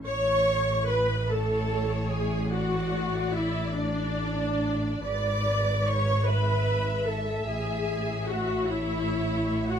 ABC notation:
X:1
M:6/8
L:1/16
Q:3/8=49
K:A
V:1 name="Violin section"
c'4 b2 a4 g2 | f4 e2 d6 | d'4 c'2 b4 a2 | g4 f2 e4- e f |]
V:2 name="Violin section"
z6 c6 | d12 | B6 e6- | e6 c6 |]
V:3 name="Viola section"
c4 B2 A4 G2 | F4 E2 D6 | d4 c2 B4 A2 | G4 F2 E4- E F |]
V:4 name="Cello section" clef=bass
A,,12- | A,,12 | G,,12 | A,,12 |]
V:5 name="Double bass section" clef=bass
A,,,12- | A,,,12 | G,,,12 | A,,,12 |]